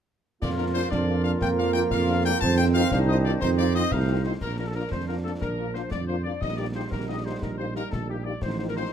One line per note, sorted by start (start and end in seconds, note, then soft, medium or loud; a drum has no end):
0.41 0.84 F2 medium
0.41 2.38 F3 medium
0.41 2.38 A#3 medium
0.41 0.89 F4 medium
0.41 0.89 A#4 medium
0.41 0.50 D5 loud
0.41 concert bass drum medium
0.41 snare medium
0.41 crash soft
0.58 0.64 A#3 medium
0.58 0.64 D4 medium
0.58 0.64 F4 medium
0.58 0.66 A#4 medium
0.74 0.81 A#3 medium
0.74 0.81 D4 medium
0.74 0.81 F4 medium
0.74 0.91 C5 loud
0.91 1.34 F2 medium
0.91 1.39 D4 medium
0.91 1.88 F4 medium
0.91 1.88 A#4 medium
0.91 1.23 D5 medium
0.91 concert bass drum medium
0.91 snare medium
1.09 1.15 A#3 medium
1.09 1.15 D4 medium
1.09 1.15 F4 medium
1.24 1.31 A#3 medium
1.24 1.32 D4 medium
1.24 1.32 F4 medium
1.24 1.32 F5 loud
1.41 1.84 F2 medium
1.41 2.45 A#3 medium
1.41 1.50 G5 loud
1.41 concert bass drum medium
1.41 snare medium
1.58 1.65 A#3 medium
1.58 1.65 D4 medium
1.58 1.65 F4 medium
1.58 1.74 F5 loud
1.74 1.81 A#3 medium
1.74 1.82 D4 medium
1.74 1.82 F4 medium
1.74 1.82 G5 loud
1.74 snare medium
1.91 2.34 F2 medium
1.91 2.39 F4 medium
1.91 2.39 A#4 medium
1.91 2.23 F5 loud
1.91 concert bass drum medium
1.91 snare medium
2.09 2.15 A#3 medium
2.09 2.15 D4 medium
2.09 2.15 F4 medium
2.24 2.32 A#3 medium
2.24 2.32 D4 medium
2.24 2.32 F4 medium
2.24 2.40 G5 loud
2.41 2.84 F2 loud
2.41 4.26 D#3 medium
2.41 4.22 C4 medium
2.41 2.94 C4 loud
2.41 2.92 D#4 medium
2.41 2.89 C5 medium
2.41 2.57 A5 loud
2.41 concert bass drum medium
2.41 snare medium
2.58 2.65 C4 medium
2.58 2.65 D#4 medium
2.58 2.65 F4 medium
2.58 2.66 G5 loud
2.75 2.82 C4 medium
2.75 2.82 D#4 medium
2.75 2.82 F4 medium
2.75 2.90 F5 loud
2.91 3.34 C2 loud
2.91 3.42 D4 loud
2.91 3.39 D#4 medium
2.91 3.39 C5 medium
2.91 2.99 F5 loud
2.91 concert bass drum medium
2.91 snare medium
3.09 3.15 C4 medium
3.09 3.15 D#4 medium
3.09 3.15 F4 medium
3.09 3.16 D#5 loud
3.25 3.31 C4 medium
3.25 3.31 D#4 medium
3.25 3.31 F4 medium
3.25 3.33 D5 loud
3.41 3.84 F2 medium
3.41 3.95 C4 medium
3.41 3.89 D#4 medium
3.41 3.49 C5 loud
3.41 3.89 C5 medium
3.41 concert bass drum medium
3.41 snare medium
3.58 3.65 C4 medium
3.58 3.65 D#4 medium
3.58 3.65 F4 medium
3.58 3.74 D5 loud
3.75 3.81 C4 medium
3.75 3.82 D#4 medium
3.75 3.81 F4 medium
3.75 3.91 D#5 loud
3.75 snare medium
3.91 4.34 C2 medium
3.91 4.18 A3 medium
3.91 4.24 D#4 medium
3.91 4.24 C5 medium
3.91 4.26 F5 loud
3.91 concert bass drum medium
3.91 snare medium
4.08 4.15 C4 medium
4.08 4.15 D#4 medium
4.08 4.15 F4 medium
4.25 4.31 C4 medium
4.25 4.32 D#4 medium
4.25 4.32 F4 medium
4.25 4.32 C5 medium
4.25 4.33 C5 medium
4.41 4.84 A#1 medium
4.41 6.39 F3 medium
4.41 6.39 D4 medium
4.41 4.49 A#4 medium
4.41 4.58 A#4 medium
4.41 concert bass drum medium
4.41 snare soft
4.41 crash soft
4.59 4.65 A#3 soft
4.59 4.65 D4 soft
4.59 4.65 F4 soft
4.59 4.66 A#4 medium
4.59 4.67 A#4 medium
4.67 4.75 A4 medium
4.67 4.76 A4 medium
4.75 4.82 A#3 medium
4.75 4.81 D4 medium
4.75 4.82 F4 medium
4.75 4.91 A#4 medium
4.91 5.33 F2 medium
4.91 5.07 C5 medium
4.91 5.08 C5 medium
4.91 concert bass drum medium
4.91 snare medium
5.07 5.15 A#3 soft
5.07 5.15 D4 soft
5.07 5.15 F4 soft
5.07 5.15 A#4 medium
5.07 5.16 A#4 medium
5.23 5.32 A#3 soft
5.23 5.31 D4 soft
5.23 5.31 F4 soft
5.23 5.31 A4 medium
5.23 5.32 A4 medium
5.41 5.84 A#1 medium
5.41 5.72 A#4 medium
5.41 5.73 A#4 medium
5.41 concert bass drum medium
5.41 snare medium
5.59 5.65 A#3 soft
5.59 5.65 D4 soft
5.59 5.65 F4 soft
5.74 5.82 A#3 soft
5.74 5.82 D4 medium
5.74 5.81 F4 medium
5.74 5.82 C5 medium
5.74 5.92 C5 medium
5.74 snare soft
5.91 6.34 F2 medium
5.91 6.07 D5 medium
5.91 5.99 D5 medium
5.91 concert bass drum medium
5.91 snare medium
6.07 6.15 A#3 soft
6.07 6.15 D4 soft
6.07 6.15 F4 soft
6.07 6.23 C5 medium
6.07 6.16 C5 medium
6.23 6.32 A#3 soft
6.23 6.32 D4 soft
6.23 6.32 F4 soft
6.23 6.40 D5 medium
6.23 6.33 D5 medium
6.41 6.84 A#1 medium
6.41 8.39 G3 medium
6.41 8.39 D#4 medium
6.41 6.57 D#5 medium
6.41 concert bass drum medium
6.41 snare medium
6.57 6.65 A#3 soft
6.57 6.65 D#4 soft
6.57 6.65 G4 soft
6.57 6.65 D5 medium
6.57 6.66 D5 medium
6.75 6.82 A#3 medium
6.75 6.82 D#4 soft
6.75 6.82 G4 medium
6.75 6.91 C5 medium
6.75 6.83 C5 medium
6.91 7.34 A#1 medium
6.91 7.07 A#4 medium
6.91 7.08 A#4 medium
6.91 concert bass drum medium
6.91 snare medium
7.09 7.15 A#3 soft
7.09 7.15 D#4 soft
7.09 7.15 G4 medium
7.09 7.25 D#5 medium
7.09 7.17 D#5 medium
7.25 7.32 A#3 soft
7.25 7.32 D#4 soft
7.25 7.32 G4 soft
7.25 7.42 C5 medium
7.25 7.34 C5 medium
7.42 7.80 A#1 medium
7.42 7.59 A#4 medium
7.42 7.50 A#4 medium
7.42 concert bass drum medium
7.42 snare medium
7.58 7.65 A#3 soft
7.58 7.65 D#4 medium
7.58 7.65 G4 soft
7.58 7.74 C5 medium
7.58 7.66 C5 medium
7.76 7.82 A#3 medium
7.76 7.82 D#4 medium
7.76 7.82 G4 medium
7.76 7.91 A#4 medium
7.76 7.84 A#4 medium
7.76 snare medium
7.92 8.34 A#1 medium
7.92 8.09 A4 medium
7.92 8.08 A4 medium
7.92 concert bass drum medium
7.92 snare medium
8.09 8.16 A#3 soft
8.09 8.16 D#4 soft
8.09 8.25 G4 medium
8.09 8.16 G4 soft
8.09 8.17 G4 medium
8.25 8.32 A#3 soft
8.25 8.32 D#4 medium
8.25 8.32 G4 soft
8.25 8.33 D5 medium
8.25 8.42 D5 medium
8.42 8.84 A1 medium
8.42 8.93 F3 medium
8.42 8.93 D#4 medium
8.42 8.58 C5 medium
8.42 8.57 C5 medium
8.42 concert bass drum medium
8.42 snare medium
8.42 crash soft
8.59 8.65 C4 medium
8.59 8.65 D#4 medium
8.59 8.65 F4 soft
8.59 8.62 C5 medium
8.59 8.63 C5 medium
8.68 8.76 A#4 medium
8.76 8.83 C4 medium
8.76 8.83 D#4 medium
8.76 8.83 F4 medium
8.76 8.91 C5 medium
8.76 8.92 C5 medium